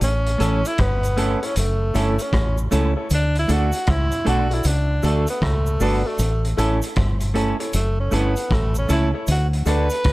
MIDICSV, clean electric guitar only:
0, 0, Header, 1, 3, 480
1, 0, Start_track
1, 0, Key_signature, 2, "major"
1, 0, Tempo, 772201
1, 11, Time_signature, 4, 2, 24, 8
1, 6295, End_track
2, 0, Start_track
2, 0, Title_t, "Clean electric guitar"
2, 0, Program_c, 0, 27
2, 237, Note_on_c, 0, 57, 86
2, 244, Note_on_c, 0, 61, 78
2, 246, Note_on_c, 0, 64, 77
2, 251, Note_on_c, 0, 69, 81
2, 374, Note_off_c, 0, 57, 0
2, 377, Note_off_c, 0, 61, 0
2, 378, Note_off_c, 0, 64, 0
2, 381, Note_off_c, 0, 69, 0
2, 724, Note_on_c, 0, 57, 93
2, 729, Note_on_c, 0, 61, 93
2, 733, Note_on_c, 0, 64, 102
2, 738, Note_on_c, 0, 69, 103
2, 857, Note_off_c, 0, 57, 0
2, 859, Note_off_c, 0, 61, 0
2, 862, Note_off_c, 0, 64, 0
2, 864, Note_off_c, 0, 69, 0
2, 1209, Note_on_c, 0, 57, 79
2, 1212, Note_on_c, 0, 61, 82
2, 1217, Note_on_c, 0, 64, 88
2, 1219, Note_on_c, 0, 69, 80
2, 1339, Note_off_c, 0, 57, 0
2, 1341, Note_off_c, 0, 61, 0
2, 1343, Note_off_c, 0, 64, 0
2, 1345, Note_off_c, 0, 69, 0
2, 1685, Note_on_c, 0, 57, 84
2, 1688, Note_on_c, 0, 61, 83
2, 1694, Note_on_c, 0, 64, 90
2, 1696, Note_on_c, 0, 69, 84
2, 1818, Note_off_c, 0, 57, 0
2, 1819, Note_off_c, 0, 61, 0
2, 1822, Note_off_c, 0, 64, 0
2, 1823, Note_off_c, 0, 69, 0
2, 2162, Note_on_c, 0, 57, 83
2, 2168, Note_on_c, 0, 62, 82
2, 2171, Note_on_c, 0, 66, 82
2, 2175, Note_on_c, 0, 69, 75
2, 2296, Note_off_c, 0, 57, 0
2, 2299, Note_off_c, 0, 62, 0
2, 2301, Note_off_c, 0, 66, 0
2, 2302, Note_off_c, 0, 69, 0
2, 2640, Note_on_c, 0, 57, 90
2, 2644, Note_on_c, 0, 62, 94
2, 2650, Note_on_c, 0, 66, 95
2, 2653, Note_on_c, 0, 69, 102
2, 2775, Note_off_c, 0, 57, 0
2, 2777, Note_off_c, 0, 62, 0
2, 2780, Note_off_c, 0, 66, 0
2, 2782, Note_off_c, 0, 69, 0
2, 3128, Note_on_c, 0, 57, 77
2, 3133, Note_on_c, 0, 62, 84
2, 3137, Note_on_c, 0, 66, 83
2, 3141, Note_on_c, 0, 69, 95
2, 3259, Note_off_c, 0, 57, 0
2, 3261, Note_off_c, 0, 62, 0
2, 3263, Note_off_c, 0, 66, 0
2, 3265, Note_off_c, 0, 69, 0
2, 3609, Note_on_c, 0, 57, 88
2, 3613, Note_on_c, 0, 62, 93
2, 3618, Note_on_c, 0, 66, 86
2, 3621, Note_on_c, 0, 69, 94
2, 3739, Note_off_c, 0, 57, 0
2, 3741, Note_off_c, 0, 62, 0
2, 3744, Note_off_c, 0, 66, 0
2, 3745, Note_off_c, 0, 69, 0
2, 4088, Note_on_c, 0, 57, 81
2, 4093, Note_on_c, 0, 61, 84
2, 4098, Note_on_c, 0, 64, 89
2, 4100, Note_on_c, 0, 69, 98
2, 4218, Note_off_c, 0, 57, 0
2, 4221, Note_off_c, 0, 61, 0
2, 4224, Note_off_c, 0, 64, 0
2, 4224, Note_off_c, 0, 69, 0
2, 4562, Note_on_c, 0, 57, 87
2, 4567, Note_on_c, 0, 61, 80
2, 4571, Note_on_c, 0, 64, 83
2, 4577, Note_on_c, 0, 69, 83
2, 4696, Note_off_c, 0, 57, 0
2, 4698, Note_off_c, 0, 61, 0
2, 4700, Note_off_c, 0, 64, 0
2, 4703, Note_off_c, 0, 69, 0
2, 5042, Note_on_c, 0, 57, 85
2, 5049, Note_on_c, 0, 61, 90
2, 5053, Note_on_c, 0, 64, 95
2, 5058, Note_on_c, 0, 69, 95
2, 5175, Note_off_c, 0, 57, 0
2, 5178, Note_off_c, 0, 61, 0
2, 5180, Note_off_c, 0, 64, 0
2, 5183, Note_off_c, 0, 69, 0
2, 5522, Note_on_c, 0, 57, 86
2, 5527, Note_on_c, 0, 61, 93
2, 5531, Note_on_c, 0, 64, 80
2, 5534, Note_on_c, 0, 69, 102
2, 5655, Note_off_c, 0, 57, 0
2, 5658, Note_off_c, 0, 61, 0
2, 5659, Note_off_c, 0, 64, 0
2, 5661, Note_off_c, 0, 69, 0
2, 6005, Note_on_c, 0, 57, 80
2, 6009, Note_on_c, 0, 62, 90
2, 6012, Note_on_c, 0, 66, 88
2, 6017, Note_on_c, 0, 69, 93
2, 6136, Note_off_c, 0, 57, 0
2, 6138, Note_off_c, 0, 62, 0
2, 6140, Note_off_c, 0, 66, 0
2, 6142, Note_off_c, 0, 69, 0
2, 6295, End_track
3, 0, Start_track
3, 0, Title_t, "Muted clean electric guitar strokes"
3, 1850, Note_on_c, 9, 29, 33
3, 1912, Note_off_c, 9, 29, 0
3, 3770, Note_on_c, 9, 29, 37
3, 3832, Note_off_c, 9, 29, 0
3, 5689, Note_on_c, 9, 29, 37
3, 5752, Note_off_c, 9, 29, 0
3, 6295, End_track
0, 0, End_of_file